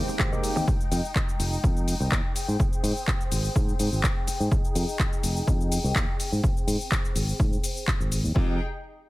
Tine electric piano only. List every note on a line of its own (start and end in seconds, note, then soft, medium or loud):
0.00 0.29 G#3 medium
0.00 0.30 A#3 medium
0.00 0.30 C4 medium
0.00 0.30 D#4 medium
0.00 0.30 G4 medium
0.32 0.65 G#3 medium
0.32 0.65 A#3 medium
0.32 0.65 C4 medium
0.32 0.65 D#4 medium
0.32 0.65 G4 medium
8.35 8.53 F3 medium
8.35 8.54 G#3 medium
8.35 8.54 C4 medium
8.35 8.54 D#4 medium
8.35 8.55 G4 medium